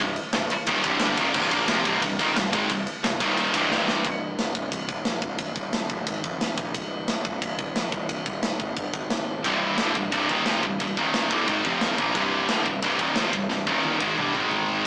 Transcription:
0.00 C1 C2 G2
0.16 ride
0.33 C1 C2 G2, snare, ride
0.50 muted picked electric bass stroke, muted distorted electric guitar stroke, ride
0.67 D#1 D#2 A#2 D#3, kick, ride
0.83 C1 C2 G2 C3, kick, ride
1.00 G1 G2 D3 G3, snare, ride
1.17 D#1 D#2 A#2 D#3, kick, ride
1.34 C1 C2 G2 C3, kick, crash
1.51 A#1 A#2 F3 A#3, kick, ride
1.68 F1 F2 C3 F3, snare, ride
1.85 C1 C2 G2 C3, kick, ride
2.02 C1 C2 G2, kick, ride
2.19 D#1 D#2 A#2 D#3, kick, ride
2.35 C1 C2 G2, snare, ride
2.53 G#1 G#2 D#3 G#3, kick, ride
2.69 C1 C2 G2, kick, ride
2.87 ride
3.03 C1 C2 G2, snare, ride
3.20 D#1 D#2 A#2 D#3, kick, ride
3.37 ride
3.53 C1 C2 G2 C3, kick, ride
3.71 snare
3.88 snare
4.05 C1, kick, ride bell
4.38 D1, snare, ride bell
4.55 C1, kick
4.72 C1, kick, ride bell
4.89 D#1, kick
5.05 F1, snare, ride bell
5.22 C1, kick
5.38 C1, kick, ride bell
5.55 D#1, kick
5.73 snare, ride bell
5.90 D1, kick
6.07 G#1, kick, ride bell
6.24 F1, kick
6.41 snare, ride bell
6.58 A#1, kick
6.75 C1, kick, ride bell
7.08 D1, snare, ride bell
7.25 C1, kick
7.42 C1, kick, ride bell
7.59 D#1, kick
7.76 F1, snare, ride bell
7.92 C1, kick
8.09 C1, kick, ride bell
8.26 D#1, kick
8.43 snare, ride bell
8.60 G#1, kick
8.77 G1, kick, ride bell
8.93 G#1, kick
9.10 snare, ride bell
9.43 C1 C2 G2 C3, kick, ride bell
9.77 D1 D2 A2 D3, snare, ride bell
9.94 C1 C2 G2, kick
10.11 C1 C2 G2 C3, kick, ride bell
10.28 D#1 D#2 A#2 D#3, kick
10.45 F1 F2 C3 F3, snare, ride bell
10.61 C1 C2 G2, kick
10.78 C1 C2 G2, kick, ride bell
10.95 D#1 D#2 A#2 D#3, kick
11.14 snare, ride bell
11.29 D1 D2 A2 D3, kick
11.46 G#1 G#2 D#3 G#3, kick, ride bell
11.63 F1 F2 C3 F3, kick
11.81 snare, ride bell
11.96 A#1 A#2 F3 A#3, kick
12.14 C1 C2 G2 C3, kick, ride bell
12.48 D1 D2 A2 D3, snare, ride bell
12.66 C1 C2 G2, kick
12.82 C1 C2 G2 C3, kick, ride bell
12.99 D#1 D#2 A#2 D#3, kick
13.15 F1 F2 C3 F3, snare, ride bell
13.33 C1 C2 G2, kick
13.50 C1 C2 G2, snare
13.67 D#1 D#2 A#2 D#3, kick
13.84 high tom
14.00 G#1 G#2 D#3 G#3, kick
14.16 G1 G2 D3 G3, mid tom
14.34 G#1 G#2 D#3 G#3, mid tom
14.51 floor tom
14.69 floor tom
14.84 A#2

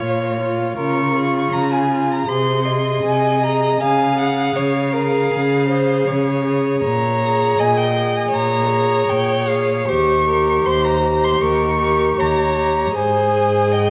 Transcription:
Already playing: F4 C#5
0.01 A#2
0.39 F4
0.77 C#3 F4 A#4 C#6
1.15 F4 G#4
1.52 C#3 A#5
1.73 G#5
1.91 F4
2.11 A#5
2.28 C3 G#4 C5 C6
2.65 G#4 D#5
3.04 C3 G#5
3.43 G#4 A#5
3.80 C#3 G#4 F5 G#5
4.18 G#4 F#5
4.56 C#3 C#5 F5
4.93 G#4 A#4
5.31 C#3 G#4
5.68 G#4 C5
6.07 C#3 C#5
6.45 G#4
6.82 A#2 C#5 A#5
7.22 G#4
7.59 A#2 D#5 G#5
7.78 G5
7.97 G#4
8.17 G#5
8.33 A#2 C#5 A#5
8.70 G#4
9.09 A#2 G5
9.48 G#4 F5
9.88 D#2 G4 C5 C#6
10.28 G4 A#4
10.64 D#2 C5 C6
10.84 A#5
11.04 G4
11.24 C6
11.40 D#2 A#4 C#6
11.80 G4 A#4
12.17 D#2 C#5 A#5
12.58 G4 A#5
12.93 G#2 G#4 C5
12.98 G#5
13.72 D#5 G5

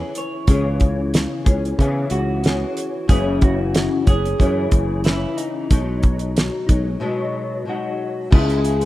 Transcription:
Already playing: E3 B3 C#4 G#4
0.15 C#5, closed hi-hat
0.47 C#2 C#3 E3 B3 C#4 G#4, kick, closed hi-hat
0.80 kick, closed hi-hat
1.14 snare, closed hi-hat
1.45 C#2 B3 C#4 G#4, kick, closed hi-hat
1.65 closed hi-hat
1.79 C#3 E3 B3 C#4 G#4, kick, closed hi-hat
2.10 C#2 F#4, closed hi-hat
2.43 E3 B3 C#4 G#4, snare, closed hi-hat
2.77 closed hi-hat
3.08 F#1 F#2 C#3 E3 B3 C#4 G#4, kick, closed hi-hat
3.41 F#4, kick, closed hi-hat
3.75 snare, closed hi-hat
4.05 F#1 B3 C#4 G#4, kick, closed hi-hat
4.10 E3
4.25 closed hi-hat
4.38 F#2 C#3 E3 B3 C#4, kick, closed hi-hat
4.71 F#1, kick, closed hi-hat
5.04 C#3 E3 B3 E4, snare, closed hi-hat
5.08 C#4
5.37 D#4, closed hi-hat
5.70 B1 B2 F#3 G#3 D#4, kick, closed hi-hat
6.03 kick, closed hi-hat
6.19 closed hi-hat
6.37 snare, closed hi-hat
6.66 B1 G#3 D#4, kick, closed hi-hat
6.71 F#3
7.00 B2 F#3 G#3 D#4
7.65 B2 F#3 G#3 F#4
7.69 D#4
8.31 C#2 C#3 G#3 B3 E4 G#4 C#5 E5 G#5, kick, crash
8.50 closed hi-hat
8.65 closed hi-hat
8.81 closed hi-hat

